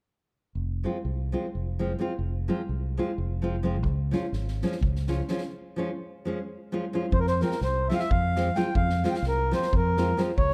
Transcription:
0.55 F1
0.84 F3 G#3 C4 F4
1.05 C2
1.32 F3 G#3 C4 F4
1.55 F1
1.79 F3 G#3 C4 F4
1.99 F3 G#3 C4 F4
2.19 F1
2.48 F3 G#3 C4 F4
2.69 C2
2.97 F3 G#3 C4 F4
3.18 F1
3.42 F3 G#3 C4 F4
3.63 F3 G#3 C4 F4
3.83 C#2, kick
4.11 F3 G#3 C#4 F4, snare
4.33 G#1, snare
4.48 snare
4.62 F3 G#3 C#4 F4, snare
4.72 snare
4.81 C#2, kick
4.96 snare
5.07 F3 G#3 C#4 F4, snare
5.28 F3 G#3 C#4 F4, snare
5.38 snare
5.76 F3 G#3 C#4 F4
6.25 F3 G#3 C#4 F4
6.72 F3 G#3 C#4 F4
6.93 F3 G#3 C#4 F4
7.12 F2 C5, kick
7.20 A#4
7.27 C5, snare
7.41 F3 G#3 C4 F4 A#4, snare
7.51 snare
7.61 C2 C5, snare
7.89 F3 G#3 C4 F4 E5, snare
7.95 F5
7.99 E5, snare
8.10 F2 F5, kick
8.36 F3 G#3 C4 F4, snare
8.55 F3 G#3 C4 F4 G5, snare
8.75 F2 F5, kick
8.90 snare
9.04 F3 G#3 C4 F4 F5, snare
9.11 G5, snare
9.17 F5
9.22 C2, snare
9.28 A#4
9.51 F3 G#3 C4 F4 C5, snare
9.62 snare
9.73 F2 A#4, kick
9.97 F3 G#3 C4 F4, snare
10.17 F3 G#3 C4 F4, snare
10.38 C#2 C#5, kick

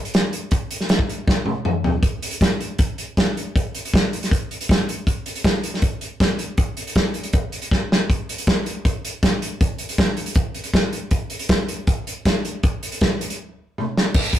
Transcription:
0.05 closed hi-hat
0.14 snare, closed hi-hat
0.33 closed hi-hat
0.51 kick, closed hi-hat
0.71 closed hi-hat
0.81 snare
0.89 snare, closed hi-hat
0.99 kick
1.09 closed hi-hat
1.28 kick, snare
1.46 high tom
1.65 mid tom
1.84 floor tom
2.03 kick, closed hi-hat
2.22 closed hi-hat
2.31 closed hi-hat
2.41 kick, snare, closed hi-hat
2.61 closed hi-hat
2.79 kick, closed hi-hat
2.98 closed hi-hat
3.17 kick, snare, closed hi-hat
3.37 closed hi-hat
3.56 kick, closed hi-hat
3.75 closed hi-hat
3.85 closed hi-hat
3.94 kick, snare
4.13 closed hi-hat
4.23 snare, closed hi-hat
4.31 kick, closed hi-hat
4.51 closed hi-hat
4.61 closed hi-hat
4.69 kick, snare, closed hi-hat
4.89 closed hi-hat
5.07 kick, closed hi-hat
5.26 closed hi-hat
5.35 closed hi-hat
5.44 kick, snare, closed hi-hat
5.63 closed hi-hat
5.74 snare
5.82 kick, closed hi-hat
6.01 closed hi-hat
6.20 kick, snare, closed hi-hat
6.39 closed hi-hat
6.58 kick, closed hi-hat
6.77 closed hi-hat
6.87 closed hi-hat
6.95 kick, snare, closed hi-hat
7.14 closed hi-hat
7.23 closed hi-hat
7.33 kick, closed hi-hat
7.52 closed hi-hat
7.62 closed hi-hat
7.71 kick, snare
7.92 snare
8.10 kick, closed hi-hat
8.29 closed hi-hat
8.38 closed hi-hat
8.47 kick, snare, closed hi-hat
8.66 closed hi-hat
8.85 kick, closed hi-hat
9.05 closed hi-hat
9.23 kick, snare, closed hi-hat
9.42 closed hi-hat
9.61 kick, closed hi-hat
9.78 closed hi-hat
9.89 closed hi-hat
9.98 kick, snare
10.17 closed hi-hat
10.26 closed hi-hat
10.34 kick, closed hi-hat
10.54 closed hi-hat
10.64 closed hi-hat
10.74 kick, snare, closed hi-hat
10.93 closed hi-hat
11.11 kick, closed hi-hat
11.30 closed hi-hat
11.39 closed hi-hat
11.49 kick, snare, closed hi-hat
11.68 closed hi-hat
11.87 kick, closed hi-hat
12.07 closed hi-hat
12.25 kick, snare, closed hi-hat
12.45 closed hi-hat
12.63 kick, closed hi-hat
12.83 closed hi-hat
12.92 closed hi-hat
13.01 kick, snare, closed hi-hat
13.21 closed hi-hat
13.30 closed hi-hat
13.78 high tom
13.97 snare
14.14 kick, crash
14.24 closed hi-hat
14.33 kick, closed hi-hat

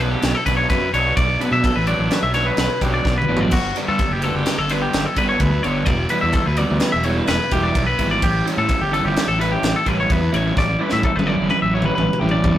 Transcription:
Already playing: B1
0.00 B2 F#3 B3 D4 B4
0.11 G4
0.22 B1, snare, ride
0.35 A4
0.46 B1 B2 F#3 B3 D4 B4, kick, snare, ride
0.57 C#5
0.70 F#2 B4, kick, snare, ride
0.93 B1 B2 F#3 B3 D4 C#5, ride
1.17 B1 D5, kick, ride
1.40 B2 F#3 B3 D4 B4, ride
1.51 B2 E5
1.64 A4, kick, ride
1.75 A1 B4
1.87 B2 F#3 B3 D4 D5, ride
1.98 A1
2.11 B4, snare, ride
2.23 B1 E5
2.34 B2 F#3 B3 D4 C#5, snare, ride
2.46 B4
2.57 B1 B4, snare, ride
2.81 B1 B2 F#3 B3 D4 G4, kick, ride
2.94 D5
3.05 B1, kick, snare
3.18 B4
3.22 mid tom
3.29 A1 B2 F#3 B3 D4
3.37 floor tom
3.41 D5
3.51 G1 F#4, kick, crash, splash
3.76 D3 G3 B3 D4, snare, ride
3.88 G2 A4
3.99 kick, snare, ride
4.11 F#1 G4
4.22 D3 G3 B3 D4 A4, ride
4.34 F#1 G4
4.46 snare, ride
4.58 G1 A4
4.69 D3 G3 B3 D4 B4, snare, ride
4.82 G4
4.93 G1, snare, ride
5.06 A4
5.16 G1 D3 G3 B3 D4 B4, kick, ride
5.29 C#5
5.40 D2 B4, kick, ride
5.63 G1 D3 G3 B3 D4 C#5, ride
5.86 E1 D5, kick, ride
6.09 E3 G3 B3 E4 B4, ride
6.21 E2 E5
6.33 A4, kick, snare, ride
6.46 D2 B4
6.57 E3 G3 B3 E4 D5, ride
6.70 D2
6.80 B4, snare, ride
6.92 E1 E5
7.03 E3 G3 B3 E4 C#5, ride
7.18 B4
7.27 E1 B4, snare, ride
7.51 E1 E3 G3 B3 E4 G4, kick, ride
7.63 D5
7.75 B1, kick, ride
7.87 B4
7.99 G#1 E3 G3 B3 E4, kick, ride
8.11 D5
8.22 A1 G4, kick, ride
8.45 E3 G3 C#4 E4, snare, ride
8.57 A2 A4
8.69 kick, snare, ride
8.81 G1 G4
8.92 E3 G3 C#4 E4 A4, ride
9.05 G1 G4
9.16 snare, ride
9.27 A1 A4
9.39 E3 G3 C#4 E4 B4, snare, ride
9.52 G4
9.63 A1, snare, ride
9.76 A4
9.86 A1 E3 G3 C#4 E4 B4, kick, ride
10.00 C#5
10.10 E2 B4, kick, ride
10.32 A1 E3 G3 C#4 E4 C#5, ride
10.57 A1 D5, kick, snare
10.80 E3 G3 C#4 E4 B4
10.90 A2 E5, snare
11.03 A4, kick
11.16 G1 B4, high tom
11.27 E3 G3 C#4 E4 D5
11.40 G1
11.50 B4, high tom
11.62 A1 E5
11.74 E3 G3 C#4 E4 C#5
11.82 B4, mid tom
11.95 A1 B4, mid tom
12.13 mid tom
12.20 A1 E3 G3 C#4 E4 G4
12.29 D5, mid tom
12.44 E2, kick, floor tom

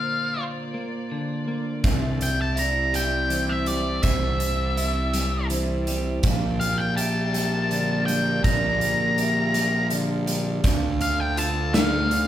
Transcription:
Already playing: A#2 D3 A#3 F4 C5 D5 F5
0.38 F4
0.74 A#3
1.11 D3
1.48 A#3
1.84 C2 C3 C4 G4 E5, kick, closed hi-hat
2.21 G5, closed hi-hat
2.42 A5
2.56 E4 D5 A#5, closed hi-hat
2.93 G3 G5, closed hi-hat
3.30 E3 C5, closed hi-hat
3.49 E5
3.66 G3 D5, closed hi-hat
4.03 C2 C3 C5 E5, kick, closed hi-hat
4.40 closed hi-hat
4.77 E4 E5, closed hi-hat
5.14 G3, closed hi-hat
5.50 E3 C5, closed hi-hat
5.87 G3, closed hi-hat
6.23 A#1 A#2 A#3 A#4 D5 F5 G5, kick, closed hi-hat
6.60 F5, closed hi-hat
6.78 G5
6.97 G4 E5 A5, closed hi-hat
7.33 G3, closed hi-hat
7.70 D3 D5, closed hi-hat
8.06 G3 G5, closed hi-hat
8.43 A#1 A#2 F4 A#5, kick, closed hi-hat
8.81 closed hi-hat
9.18 G4 E5, closed hi-hat
9.54 G3, closed hi-hat
9.90 D3 D5, closed hi-hat
10.27 G3, closed hi-hat
10.62 D2 D3 D4 A4 F5, kick, closed hi-hat
11.01 F5, closed hi-hat
11.20 G5
11.37 F4 A5 E6, closed hi-hat
11.74 A3 F5, snare, closed hi-hat
12.10 D3 D5, closed hi-hat

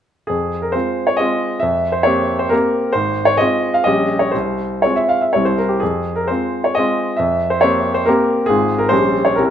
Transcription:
0.27 F2 G#4
0.62 A#4
0.72 G#3 C4 F4 C5
1.07 C#5
1.17 G#3 C4 F4 D#5
1.60 F2 E5
1.92 C5
2.03 A#3 C4 G4 C#5
2.39 C5
2.49 A#3 C4 G4 A#4
2.93 G#1 C5
3.25 C#5
3.37 G#3 C4 F4 D#5
3.74 F5
3.84 A#1 G3 C#4 G4 D#5
4.19 C#5
4.31 C2 C5
4.82 G#3 C4 F4 C#5
4.96 E5
5.09 F5
5.21 E5
5.33 C2 G3 C4 E4 C#5
5.45 C5
5.58 A#4
5.69 G4
5.80 F2 G#4
6.16 A#4
6.28 G#3 C4 F4 C5
6.64 C#5
6.75 G#3 C4 F4 D#5
7.17 F2 E5
7.50 C5
7.61 A#3 C4 G4 C#5
7.94 C5
8.06 A#3 C4 G4 A#4
8.46 G#1 G#3 C4 F4 G#4
8.78 A#4
8.89 A#1 G3 C#4 G4 C5
9.25 C#5
9.35 C2 G3 C4 E4 A#4

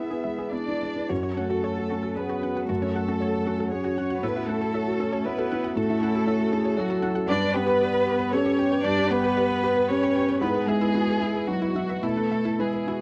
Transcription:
Already playing: B3 E4 G#4 B4 E5
0.10 E4 G#4 B4
0.24 G#3 E5
0.38 E4 G#4 B4
0.52 B3 D4 E4 D5
0.68 E4 B4
0.83 G#3
0.96 E4 B4
1.09 F#2 C#4 F#4 C#5 F#5
1.23 F#4 C#5
1.36 A3 C#4 A4 F#5
1.50 F#4
1.63 A4 C#5
1.77 F#4
1.90 C#4 F#4
2.03 F#4 A4
2.15 B3 G#4 B4 C#5
2.30 F#4
2.42 C#4 F#5
2.55 F#4 F#5
2.68 F#2 A3 F#4 A4
2.82 C#4 C#5
2.94 F#4 A4 F#5
3.08 C#4 F#4
3.20 C#5
3.34 F#4
3.46 C#4 F#4
3.58 F#4 A4
3.71 C#4 G#4 C#5
3.84 F#4
3.96 C#4 F#4 F#5
4.10 F#4 F#5
4.22 A2 B3 E4 A4 B4 E5
4.36 F#4 E5
4.47 A3 E4 A4 F#5
4.61 F#4 A4
4.73 F#4 C#5 E5
4.88 F#4
4.99 C#4 E4 A4
5.13 F#4 C#5
5.24 B3 E4 B4 C#5
5.38 F#4 A4
5.52 E4 F#5
5.64 F#4 F#5
5.76 A2 A3 F#4 A4
5.89 E4 E5
6.01 C#4 E4 F#5
6.15 F#4 A4
6.26 F#4 C#5 E5
6.40 F#4
6.52 E4 G#4 A4
6.64 F#4 C#5
6.77 F#3 F#4 A4 C#5
6.90 F#4 A4
7.02 E4 F#5
7.15 F#4 F#5
7.28 G2 B3 D4 G4 B4 D5
7.41 B4 D5
7.54 B3 G4 B4 G5
7.66 G4 B4
7.80 G4 D5
7.94 B4
8.06 G4
8.20 B4
8.32 C#4 G4 A4 C#5
8.46 G4 B4
8.58 G4 G5
8.72 B4 G5
8.84 G2 D4 G4 D5
8.98 G4 D5
9.10 B3 B4 G5
9.24 G4 B4
9.37 G4 B4 D5
9.50 B4
9.64 G4
9.76 B4
9.89 C#4 G4 C#5
10.03 G4 B4
10.16 G4 G5
10.29 B4 G5
10.40 G#2 B3 E4 G#4 B4
10.54 B4
10.65 G#3 E4 G#4 E5
10.81 E4 B4
10.94 E4 F#4 B4
11.08 B4
11.20 E4
11.34 G#4 B4
11.47 F#3 E4 F#4
11.61 E4 B4
11.75 E4 E5
11.89 B4 E5
12.02 B2 A3 E4 A4
12.17 E4 B4
12.31 B3 E5
12.45 E4 B4
12.59 G#3 E4 G#4 B4
12.73 B4
12.87 E4 F#4

